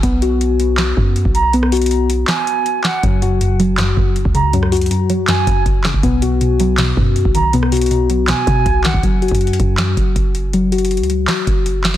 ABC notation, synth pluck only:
X:1
M:4/4
L:1/8
Q:1/4=160
K:Blyd
V:1 name="Synth pluck" clef=bass
z8 | z8 | F,, F,, F,, F, F,, F,,2 C, | F,, F,, F,, F, F,, F,,2 C, |
B,, B,, B,, F, B,, B,,2 D, | B,, B,, B,, F, B,, B,,2 D, | z8 | z8 |]